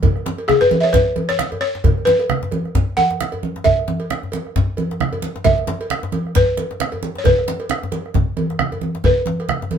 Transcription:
0.03 bombo low, cowbell, low conga, djembe bass
0.16 bombo rim, high conga
0.26 bombo rim, djembe slap, high conga
0.38 cowbell
0.48 G#4, bombo rim, high conga, low conga
0.61 B4, djembe slap, djembe tone
0.71 bombo rim, cowbell, high conga
0.80 C#5 E5, bombo rim, djembe slap
0.93 B4, bombo low, djembe slap, low conga, djembe bass
1.07 djembe slap
1.16 cowbell, high conga
1.29 C#5, bombo rim, djembe slap
1.39 bombo rim, low conga
1.52 cowbell, djembe tone, high conga
1.61 C#5, bombo rim
1.75 djembe slap
1.84 bombo rim, bombo low, cowbell, djembe bass, low conga
1.98 djembe slap, high conga
2.05 B4, djembe slap, high conga
2.19 bombo rim, cowbell, djembe slap
2.29 bombo rim, low conga
2.43 djembe slap, djembe tone
2.52 cowbell, high conga
2.65 bombo rim, high conga
2.75 bombo rim, bombo low, djembe slap, djembe bass, low conga
2.88 djembe slap
2.97 F#5, cowbell, high conga
3.10 bombo rim, djembe slap
3.21 bombo rim, low conga
3.32 cowbell, djembe tone
3.43 djembe slap, high conga
3.56 bombo rim, djembe slap
3.64 E5, bombo low, cowbell, low conga, djembe bass
3.79 bombo rim, high conga
3.88 djembe slap, high conga
4.00 cowbell
4.10 bombo rim, high conga, low conga
4.23 bombo rim, djembe tone
4.32 bombo rim, cowbell, djembe slap, high conga
4.46 bombo rim, djembe slap
4.56 bombo low, djembe slap, djembe bass, low conga
4.69 djembe slap
4.77 cowbell, high conga
4.91 bombo rim, djembe slap
5.00 bombo rim, low conga
5.13 cowbell, djembe tone, high conga
5.22 bombo rim, high conga
5.36 djembe slap
5.44 E5, bombo low, cowbell, low conga, djembe bass
5.58 bombo rim, djembe slap, high conga
5.67 bombo rim, djembe slap, high conga
5.81 cowbell
5.90 bombo rim, high conga, low conga
6.03 bombo rim, djembe slap, djembe tone
6.12 bombo rim, cowbell, high conga
6.26 bombo rim, djembe slap
6.35 B4, bombo low, djembe slap, low conga, djembe bass
6.48 djembe slap
6.57 cowbell, high conga
6.71 bombo rim, djembe slap
6.80 bombo rim, low conga
6.92 cowbell, high conga, djembe tone
7.03 high conga
7.15 C#5, djembe slap
7.24 B4, bombo low, cowbell, low conga, djembe bass
7.38 bombo rim, high conga
7.48 bombo rim, djembe slap, high conga
7.60 cowbell
7.69 bombo rim, high conga, low conga
7.83 bombo rim, djembe slap, djembe tone
7.92 bombo rim, cowbell, djembe slap, high conga
8.06 bombo rim
8.14 bombo low, djembe slap, low conga, djembe bass
8.28 djembe slap
8.37 cowbell, high conga
8.50 bombo rim, djembe slap
8.59 bombo rim, low conga
8.72 cowbell, high conga, djembe tone
8.81 bombo rim, high conga
8.95 djembe slap
9.04 B4, bombo rim, bombo low, cowbell, low conga, djembe bass
9.17 high conga
9.26 djembe slap, high conga
9.40 bombo rim, cowbell, djembe slap
9.49 bombo rim, low conga
9.62 bombo rim, djembe slap, djembe tone
9.71 cowbell, high conga

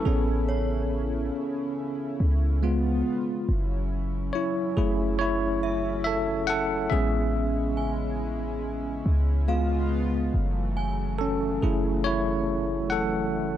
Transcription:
Already playing: C#4 E4 A4
0.05 A1 C#3 B3 C#4 G#4
0.49 C#5
2.20 C#2
2.63 C#3 G#3 B3 F4
3.49 F#1 F#3 C#4 E4
4.33 E4 C#5
4.77 F#1 A3 E4 G#4
5.19 E4 C#5
5.63 E5
6.04 A4 E5
6.47 A4 F#5
6.90 A1 G#3 B3 C#4 G#4 E5
7.77 G#5
9.06 C#2
9.48 C#3 G#3 B3 F4 F5
10.34 F#1 E3 F#3 A3
10.77 G#5
11.19 C#4 A4
11.62 F#1 A3 E4 G#4
12.04 E4 C#5
12.90 A4 F#5

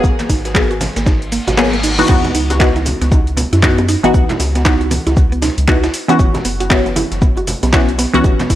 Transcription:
Already playing: F#3 A#3 B3 G#4
0.04 G#1, kick, shaker
0.19 A#3, snare, clap, closed hi-hat, high conga, shaker
0.29 G#1 D#4, kick, snare, open hi-hat, shaker
0.45 snare, closed hi-hat, shaker
0.54 F#3 A#3 B3 G#4, kick, snare, clap, shaker
0.71 F#4, closed hi-hat, shaker
0.81 snare, open hi-hat, high conga, low conga, shaker
0.96 G#1 A#3, snare, closed hi-hat, shaker
1.06 D#4, kick, snare, reverse cymbal, shaker
1.22 closed hi-hat, shaker
1.32 A#3, open hi-hat, shaker
1.48 G#1 F#4, snare, closed hi-hat, low conga, shaker
1.57 F#3 A#3 B3 G#4, snare, clap, shaker
1.73 A#3, snare, closed hi-hat, shaker
1.83 D#4, open hi-hat, shaker
1.99 E3 B3 D#4 F#4, snare, closed hi-hat, shaker
2.09 C#2 E3 B3 D#4 F#4, kick, crash, sub drop, shaker
2.24 B3, snare, closed hi-hat, high bongo, high conga, low conga, shaker
2.35 C#2 D#4, open hi-hat, shaker
2.50 closed hi-hat, high bongo, shaker
2.60 E3 B3 D#4 F#4, kick, snare, clap, shaker
2.76 E4, snare, closed hi-hat, high conga, shaker
2.85 open hi-hat, high bongo, high conga, low conga, shaker
3.01 C#2 B3, snare, closed hi-hat, shaker
3.12 D#4, kick, high bongo, shaker
3.27 closed hi-hat, shaker
3.37 B3, open hi-hat, low conga, shaker
3.53 F#2 E4, snare, closed hi-hat, high bongo, shaker
3.63 E3 B3 D#4 F#4, kick, snare, clap, shaker
3.78 B3, closed hi-hat, high bongo, shaker
3.89 D#4, snare, open hi-hat, shaker
4.03 G#1 E3 B3 D#4 F#4, closed hi-hat, shaker
4.14 C#2 B3, kick, high bongo, shaker
4.29 E4, snare, clap, closed hi-hat, high conga, low conga, shaker
4.40 C#2, snare, open hi-hat, high bongo, shaker
4.55 B3, snare, closed hi-hat, shaker
4.65 E3 B3 D#4 F#4, kick, snare, clap, shaker
4.81 closed hi-hat, high bongo, shaker
4.91 B3, open hi-hat, high conga, low conga, shaker
5.07 C#2 E4, snare, closed hi-hat, high bongo, shaker
5.17 kick, shaker
5.32 B3, closed hi-hat, shaker
5.42 D#4, snare, open hi-hat, high bongo, low conga, shaker
5.58 C#2, closed hi-hat, shaker
5.68 E3 B3 D#4 F#4, kick, clap, high bongo, shaker
5.84 E4, snare, closed hi-hat, shaker
5.94 open hi-hat, shaker
6.08 E3 B3 C#4 F#4, closed hi-hat, high bongo, shaker
6.19 F#1 E4, kick, shaker
6.34 snare, closed hi-hat, high bongo, high conga, low conga, shaker
6.45 F#1 B3, open hi-hat, shaker
6.60 F#4, closed hi-hat, shaker
6.70 E3 B3 C#4 F#4, kick, snare, clap, high bongo, shaker
6.86 B3, snare, closed hi-hat, high conga, shaker
6.96 E4, open hi-hat, high bongo, high conga, low conga, shaker
7.12 F#1, snare, closed hi-hat, shaker
7.22 B3, kick, shaker
7.37 F#4, closed hi-hat, high bongo, shaker
7.47 open hi-hat, low conga, shaker
7.63 B1 B3, snare, closed hi-hat, high bongo, shaker
7.73 E3 B3 C#4 E4 F#4, kick, snare, clap, shaker
7.89 closed hi-hat, shaker
7.98 B3, snare, open hi-hat, high bongo, shaker
8.13 C#2 E3 B3 C#4 F#4, closed hi-hat, shaker
8.24 F#1, kick, high bongo, shaker
8.40 B3, snare, clap, closed hi-hat, high conga, low conga, shaker
8.50 F#1 E4, kick, snare, open hi-hat, shaker

